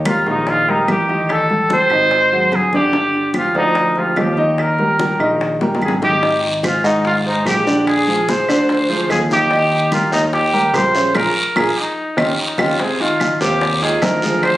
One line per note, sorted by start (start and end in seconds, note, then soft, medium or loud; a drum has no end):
0.00 0.23 D#2 medium
0.05 0.23 G3 medium
0.05 0.26 F4 medium
0.05 0.23 G4 medium
0.05 0.23 A#4 medium
0.05 high bongo medium
0.05 high conga medium
0.05 claves medium
0.26 0.84 A#1 medium
0.26 0.60 D#3 medium
0.26 0.61 D#4 medium
0.26 0.51 D#4 medium
0.26 0.61 D#5 medium
0.26 high bongo soft
0.26 high conga soft
0.47 0.71 F4 medium
0.47 high bongo medium
0.47 high conga soft
0.68 0.85 G3 medium
0.68 0.89 D#4 medium
0.68 0.85 G4 medium
0.68 0.85 A#4 medium
0.68 high conga soft
0.88 1.85 A1 medium
0.88 1.06 G3 medium
0.88 1.06 G4 medium
0.88 1.33 G4 medium
0.88 1.06 A#4 medium
0.88 high bongo soft
0.88 low bongo medium
0.88 high conga medium
0.88 claves medium
1.09 1.43 D#3 medium
1.09 1.43 D#4 medium
1.09 1.43 D#5 medium
1.09 high bongo soft
1.09 high conga soft
1.29 1.72 A4 loud
1.29 high bongo medium
1.29 high conga soft
1.29 claves medium
1.50 1.67 G3 medium
1.50 1.67 G4 medium
1.50 1.67 A4 medium
1.50 high bongo soft
1.50 high conga soft
1.70 1.88 G3 medium
1.70 1.88 G4 medium
1.70 1.88 A4 medium
1.70 2.57 C5 loud
1.70 high bongo medium
1.70 high conga medium
1.90 2.49 G#1 medium
1.90 2.25 D#3 medium
1.90 2.26 D#4 medium
1.90 2.26 D#5 medium
1.90 high bongo soft
1.90 high conga soft
1.90 claves medium
2.11 high bongo medium
2.11 high conga soft
2.32 2.66 F#3 medium
2.32 2.66 F#4 medium
2.32 2.67 G#4 medium
2.32 high conga soft
2.52 3.49 G1 medium
2.52 2.75 G#4 medium
2.52 high bongo soft
2.52 low bongo medium
2.52 high conga medium
2.52 claves medium
2.73 2.90 D3 medium
2.73 2.91 D4 medium
2.73 3.32 G4 loud
2.73 2.91 D5 medium
2.73 high bongo soft
2.73 high conga medium
2.93 3.27 D3 medium
2.93 3.28 D4 medium
2.93 3.28 D5 medium
2.93 high bongo medium
2.93 high conga soft
3.13 high bongo soft
3.13 high conga soft
3.34 3.52 F3 medium
3.34 3.53 F4 medium
3.34 3.56 F4 medium
3.34 3.53 G4 medium
3.34 high bongo medium
3.34 high conga medium
3.34 claves medium
3.55 4.13 D2 medium
3.55 3.89 F3 medium
3.55 4.00 D#4 loud
3.55 3.90 F4 medium
3.55 3.90 D5 medium
3.55 high bongo soft
3.55 high conga soft
3.75 high bongo medium
3.75 high conga soft
3.95 4.14 F3 medium
3.95 4.14 F4 medium
3.95 4.18 F4 medium
3.95 4.14 G4 medium
3.95 high conga soft
4.16 5.14 D#2 medium
4.16 4.34 F3 medium
4.16 4.34 F4 medium
4.16 4.34 G4 medium
4.16 4.62 G4 medium
4.16 high bongo soft
4.16 low bongo medium
4.16 high conga medium
4.16 claves medium
4.37 4.71 D#3 medium
4.37 4.72 D#4 medium
4.37 4.72 D#5 medium
4.37 high bongo soft
4.37 high conga soft
4.58 5.42 A#4 medium
4.58 high bongo medium
4.58 high conga soft
4.58 claves medium
4.78 4.96 G3 medium
4.78 4.96 G4 medium
4.78 4.96 A#4 medium
4.78 high bongo soft
4.78 high conga soft
4.99 5.17 G3 medium
4.99 5.17 G4 medium
4.99 5.17 A#4 medium
4.99 high bongo medium
4.99 high conga medium
5.19 5.77 A#1 medium
5.19 5.54 D#3 medium
5.19 5.54 D#4 medium
5.19 5.54 D#5 medium
5.19 high bongo soft
5.19 high conga soft
5.19 claves medium
5.41 high bongo medium
5.41 high conga soft
5.61 5.95 G3 medium
5.61 5.95 G4 medium
5.61 5.96 A#4 medium
5.61 high bongo medium
5.61 high conga soft
5.75 high bongo loud
5.81 6.78 G#1 medium
5.81 5.93 G#4 medium
5.81 high conga medium
5.81 claves medium
5.88 low bongo loud
6.02 6.19 D#3 medium
6.02 6.20 D#4 medium
6.02 6.41 G4 loud
6.02 6.20 D#5 medium
6.02 low bongo medium
6.02 high conga medium
6.22 6.56 D#3 medium
6.22 6.57 D#4 medium
6.22 6.56 D#5 medium
6.22 high bongo medium
6.22 high conga soft
6.22 long guiro medium
6.43 high bongo soft
6.43 high conga soft
6.63 6.80 G#3 medium
6.63 6.84 F4 medium
6.63 6.81 G#4 medium
6.63 6.81 C5 medium
6.63 high bongo medium
6.63 high conga medium
6.63 short guiro medium
6.63 claves medium
6.84 7.42 G#2 medium
6.84 7.18 D#3 medium
6.84 7.18 D#4 medium
6.84 7.05 D#4 medium
6.84 7.19 D#5 medium
6.84 high bongo soft
6.84 high conga soft
6.84 short guiro medium
7.05 7.16 F4 medium
7.05 high bongo medium
7.05 high conga soft
7.05 long guiro medium
7.25 7.42 G#3 medium
7.25 7.46 D#4 medium
7.25 7.43 G#4 medium
7.25 7.43 C5 medium
7.25 high conga soft
7.45 8.42 A#1 medium
7.45 7.63 G#3 medium
7.45 7.85 G4 medium
7.45 7.63 G#4 medium
7.45 7.63 C5 medium
7.45 high bongo soft
7.45 low bongo medium
7.45 high conga medium
7.45 short guiro medium
7.45 claves medium
7.67 8.00 D3 medium
7.67 8.01 D4 medium
7.67 8.01 D5 medium
7.67 high bongo soft
7.67 high conga soft
7.67 short guiro medium
7.87 8.31 G#4 loud
7.87 high bongo medium
7.87 high conga soft
7.87 long guiro medium
7.87 claves medium
8.08 8.25 F3 medium
8.08 8.25 F4 medium
8.08 8.25 G#4 medium
8.08 high bongo soft
8.08 high conga soft
8.29 8.45 F3 medium
8.29 8.45 F4 medium
8.29 8.46 G#4 medium
8.29 9.11 C5 medium
8.29 high bongo medium
8.29 high conga medium
8.29 short guiro medium
8.49 9.06 D2 medium
8.49 8.83 D3 medium
8.49 8.83 D4 medium
8.49 8.83 D5 medium
8.49 high bongo soft
8.49 high conga soft
8.49 short guiro medium
8.49 claves medium
8.69 high bongo medium
8.69 high conga soft
8.69 long guiro medium
8.89 9.23 F3 medium
8.89 9.23 F4 medium
8.89 9.24 G#4 medium
8.89 high conga soft
9.10 10.07 D#2 medium
9.10 9.20 G#4 medium
9.10 high bongo soft
9.10 low bongo medium
9.10 high conga medium
9.10 short guiro medium
9.10 claves medium
9.30 9.48 D#3 medium
9.30 9.48 D#4 medium
9.30 9.89 G4 loud
9.30 9.48 D#5 medium
9.30 high bongo soft
9.30 high conga medium
9.30 short guiro medium
9.51 9.85 D#3 medium
9.51 9.85 D#4 medium
9.51 9.85 D#5 medium
9.51 high bongo medium
9.51 high conga soft
9.51 long guiro medium
9.72 high bongo soft
9.72 high conga soft
9.92 10.09 G3 medium
9.92 10.12 F4 medium
9.92 10.09 G4 medium
9.92 10.09 A#4 medium
9.92 high bongo medium
9.92 high conga medium
9.92 short guiro medium
9.92 claves medium
10.12 10.70 D#2 medium
10.12 10.46 D#3 medium
10.12 10.46 D#4 medium
10.12 10.23 D#4 medium
10.12 10.47 D#5 medium
10.12 high bongo soft
10.12 high conga soft
10.12 short guiro medium
10.33 10.77 G4 loud
10.33 high bongo medium
10.33 high conga soft
10.33 long guiro medium
10.53 10.70 G3 medium
10.53 10.71 G4 medium
10.53 10.71 A#4 medium
10.53 high conga soft
10.74 11.12 A#1 medium
10.74 10.91 G3 medium
10.74 10.91 G4 medium
10.74 10.91 A#4 medium
10.74 11.16 C5 medium
10.74 high bongo soft
10.74 low bongo medium
10.74 high conga medium
10.74 short guiro medium
10.74 claves medium
10.95 11.11 C#3 medium
10.95 11.12 C#4 medium
10.95 11.12 C#5 medium
10.95 high bongo soft
10.95 high conga soft
10.95 short guiro medium
11.14 11.30 A#1 medium
11.14 11.28 F4 medium
11.14 11.28 G#4 medium
11.14 11.28 A#4 medium
11.14 11.59 A#4 loud
11.14 high bongo medium
11.14 high conga medium
11.14 long guiro medium
11.14 claves medium
11.56 11.71 A#1 medium
11.56 11.70 F4 medium
11.56 11.70 G#4 medium
11.56 11.81 G#4 medium
11.56 11.70 A#4 medium
11.56 high bongo medium
11.56 high conga medium
11.56 long guiro medium
11.56 claves loud
11.79 12.19 D#4 medium
12.17 12.33 D#2 loud
12.17 12.31 C#4 medium
12.17 12.31 D#4 medium
12.17 12.38 F4 medium
12.17 12.31 G4 medium
12.17 high bongo medium
12.17 high conga medium
12.17 long guiro medium
12.17 claves medium
12.40 12.62 D#4 medium
12.58 12.74 D#2 medium
12.58 12.72 C#4 medium
12.58 12.72 D#4 medium
12.58 12.82 F4 medium
12.58 12.72 G4 medium
12.58 high bongo loud
12.58 high conga loud
12.58 long guiro medium
12.58 claves medium
12.79 12.96 C3 medium
12.79 12.96 C4 medium
12.79 13.03 G#4 medium
12.79 12.97 C5 medium
12.79 high bongo medium
12.79 high conga soft
12.79 long guiro medium
13.00 13.33 D#3 medium
13.00 13.34 D#4 medium
13.00 13.34 F4 medium
13.00 13.41 F4 medium
13.00 high bongo soft
13.00 high conga soft
13.20 high bongo medium
13.20 high conga medium
13.20 short guiro medium
13.20 claves medium
13.41 13.98 D#2 medium
13.41 13.74 C3 medium
13.41 13.74 C4 medium
13.41 13.84 G4 medium
13.41 13.75 C5 medium
13.41 high bongo soft
13.41 high conga soft
13.41 short guiro medium
13.61 high bongo medium
13.61 high conga soft
13.61 long guiro medium
13.82 13.98 D#3 medium
13.82 13.99 D#4 medium
13.82 13.99 F4 medium
13.82 14.04 G#4 medium
13.82 high conga soft
14.02 14.57 D2 medium
14.02 14.19 D#3 medium
14.02 14.19 D#4 medium
14.02 14.19 F4 medium
14.02 14.43 A#4 medium
14.02 high bongo soft
14.02 low bongo medium
14.02 high conga medium
14.02 short guiro medium
14.02 claves medium
14.22 14.56 F3 medium
14.22 14.56 F4 medium
14.22 14.57 G#4 medium
14.22 high bongo soft
14.22 high conga soft
14.22 short guiro medium
14.43 14.57 C5 loud
14.43 high bongo medium
14.43 high conga soft
14.43 long guiro medium
14.43 claves medium